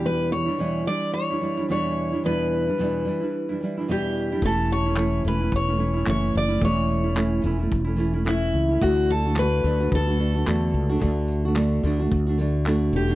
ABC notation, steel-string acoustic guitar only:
X:1
M:4/4
L:1/8
Q:"Swing 16ths" 1/4=110
K:Amix
V:1 name="Steel-string acoustic guitar"
B c2 d c2 c2 | B6 G2 | A c2 B c2 c d | c3 z3 E2 |
F A B2 A4- | A6 z G |]